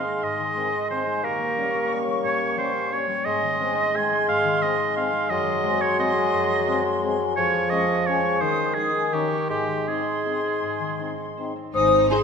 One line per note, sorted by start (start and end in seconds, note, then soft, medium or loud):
0.00 0.21 G#2 soft
0.00 0.38 D#3 soft
0.00 1.19 G#3 soft
0.00 0.71 D#4 soft
0.00 1.06 G#4 soft
0.00 0.89 C5 soft
0.00 0.25 F5 medium
0.00 1.20 C6 soft
0.07 0.54 G#3 soft
0.23 1.24 G#2 soft
0.23 0.90 D#5 medium
0.39 1.24 D#3 soft
0.55 0.69 D#3 soft
0.55 1.05 G#3 soft
0.55 0.68 C4 soft
0.72 1.24 D#4 soft
0.90 1.03 D#3 soft
0.90 1.03 C4 soft
0.90 1.24 C5 soft
0.90 1.26 C5 medium
1.07 1.24 G#3 soft
1.23 2.23 A#2 soft
1.23 2.96 A#3 medium
1.23 2.96 G4 soft
1.23 1.99 A#4 medium
1.23 2.98 C#6 medium
1.39 2.39 A#3 soft
1.57 2.07 G3 soft
1.57 1.70 G3 soft
1.57 1.69 C#4 soft
1.74 2.73 C#4 soft
1.91 2.04 G3 soft
1.91 2.03 C#4 soft
1.91 2.91 C#5 soft
2.08 2.56 G3 soft
2.24 3.27 A#2 medium
2.24 2.56 C#5 medium
2.40 3.27 A#3 soft
2.57 2.70 G3 soft
2.57 3.08 G3 soft
2.57 2.70 C#4 soft
2.57 2.94 C5 medium
2.75 3.27 C#4 soft
2.92 3.05 G3 soft
2.92 3.05 C#4 soft
2.92 3.27 C#5 soft
2.92 3.27 C#5 medium
3.09 3.27 G3 soft
3.25 4.27 G#2 medium
3.25 5.27 G#3 medium
3.25 5.26 G#4 medium
3.25 3.97 D#5 medium
3.25 5.27 C6 medium
3.42 4.43 D#3 soft
3.59 4.10 G#3 soft
3.59 3.72 G#3 soft
3.59 3.73 C4 soft
3.76 4.77 C4 soft
3.94 4.07 G#3 soft
3.94 4.07 C4 soft
3.94 4.95 G#4 soft
3.94 4.28 G#5 medium
4.12 4.60 G#3 soft
4.28 5.32 G#2 medium
4.28 4.63 F5 medium
4.44 5.32 D#3 soft
4.61 4.74 G#3 soft
4.61 5.12 G#3 soft
4.61 4.74 C4 medium
4.61 4.96 D#5 medium
4.79 5.80 C4 soft
4.96 5.09 G#3 medium
4.96 5.09 C4 medium
4.96 5.98 G#4 medium
4.96 5.31 F5 medium
5.13 5.62 G#3 soft
5.30 6.32 F#2 medium
5.30 7.34 F#3 medium
5.30 7.34 G#4 medium
5.30 5.83 D#5 loud
5.30 7.34 C6 medium
5.46 6.49 F#3 soft
5.63 6.15 G#3 medium
5.63 5.77 G#3 medium
5.63 5.78 C4 soft
5.81 6.85 C4 medium
5.81 5.99 C#5 medium
5.99 6.12 G#3 soft
5.99 6.11 C4 medium
5.99 7.02 G#4 soft
5.99 6.84 D#5 medium
6.16 6.66 G#3 soft
6.33 7.39 F#2 medium
6.50 7.39 F#3 soft
6.67 6.80 G#3 soft
6.67 7.19 G#3 soft
6.67 6.80 C4 soft
6.86 7.39 C4 soft
7.03 7.16 G#3 medium
7.03 7.16 C4 medium
7.03 8.06 G#4 soft
7.21 7.70 G#3 soft
7.36 8.42 F2 medium
7.36 8.42 F3 medium
7.36 8.04 G#4 medium
7.36 7.71 C#5 medium
7.36 8.04 C#6 medium
7.54 8.42 F3 soft
7.70 8.24 G#3 soft
7.70 7.85 G#3 soft
7.70 7.85 C#4 soft
7.70 8.08 D#5 medium
7.89 8.42 C#4 soft
8.07 8.20 G#3 soft
8.07 8.20 C#4 soft
8.07 8.94 G#4 soft
8.07 8.41 G#4 medium
8.07 8.42 C#5 medium
8.07 8.40 C#6 medium
8.25 8.57 G#3 soft
8.41 9.49 D#3 medium
8.41 9.12 D#3 medium
8.41 8.75 G#4 soft
8.41 8.76 C5 medium
8.41 8.74 D#6 medium
8.58 9.15 G#3 soft
8.74 8.89 G#3 soft
8.74 8.89 D#4 soft
8.74 9.30 D#4 soft
8.74 9.15 G#4 medium
8.74 9.13 G#4 soft
8.74 9.13 D#6 medium
8.95 9.15 G#4 soft
9.13 9.51 D#3 soft
9.13 9.27 C#4 soft
9.13 9.27 D#4 soft
9.13 9.49 G4 medium
9.13 9.49 A#4 soft
9.13 9.49 C#6 soft
9.31 10.05 D#4 soft
9.31 9.51 A#4 soft
9.49 10.61 G#2 medium
9.49 11.53 G#3 medium
9.49 9.90 G4 medium
9.49 9.86 G#4 soft
9.49 9.87 C6 soft
9.67 10.79 D#3 soft
9.87 10.43 C4 soft
9.87 10.01 C4 soft
9.87 10.02 D#4 soft
9.87 11.53 G#4 soft
9.87 11.38 G#4 medium
9.87 11.53 C6 soft
10.06 11.17 D#4 soft
10.25 10.39 C4 soft
10.25 10.39 D#4 soft
10.25 11.36 C5 soft
10.44 10.98 C4 soft
10.62 11.72 G#2 soft
10.80 11.76 D#3 soft
10.99 11.55 C4 soft
10.99 11.13 C4 soft
10.99 11.13 D#4 soft
11.18 12.23 D#4 soft
11.37 11.52 C4 soft
11.37 11.52 D#4 soft
11.37 12.23 C5 soft
11.56 12.08 C4 soft
11.73 12.04 G#1 medium
11.73 12.23 G#2 medium
11.73 12.07 D#4 medium
11.73 12.08 C5 medium
11.73 12.08 D#6 medium
11.91 12.23 D#3 soft
12.10 12.23 C4 soft
12.10 12.23 C4 medium
12.10 12.19 D#4 soft
12.10 12.18 G#4 soft
12.10 12.23 G#4 medium
12.10 12.18 C5 soft
12.10 12.23 C6 medium